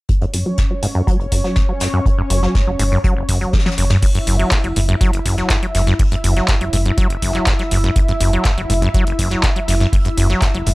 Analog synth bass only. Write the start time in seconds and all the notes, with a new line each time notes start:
2.30 F#1
2.67 F#1
2.79 F#1
3.29 F#1
3.78 F#1
4.27 F#1
4.64 F#1
4.76 F#1
5.25 F#1
5.75 F#1
6.24 F#1
6.61 F#1
6.73 F#1
7.22 F#1
7.71 F#1
8.20 F#1
8.57 F#1
8.70 F#1
9.19 F#1
9.68 F#1
10.17 F#1
10.54 F#1
10.66 F#1